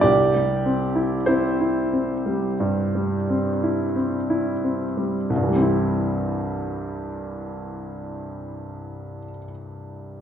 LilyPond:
\new Staff \with { instrumentName = "Grand piano" } { \time 4/4 \key c \major \tempo 4 = 48 << { <g' d''>4 <e' c''>2 r4 | <c, g, e g c' e'>1 | } \\ { c,16 g16 c'16 e'16 c'16 e'16 c'16 g16 g,16 g16 c'16 e'16 c'16 e'16 c'16 g16 | r1 | } >> }